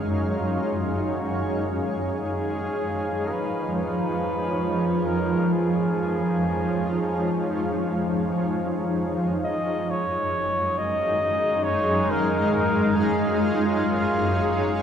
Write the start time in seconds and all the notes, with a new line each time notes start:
Already playing: F#2 G#3 D#4 G#4 C#5 F5
0.24 F4
1.12 F#4
1.95 F3 G#4
3.30 B4
3.75 B4
5.06 A#4
5.52 G#4
9.01 F#2
9.31 G#3 D#4
9.44 D#5
9.90 C#5 F5
10.13 G#4
10.78 D#5
11.64 C#5
12.10 A#4
12.19 C#5
12.52 A#4
12.96 G#4
13.40 F4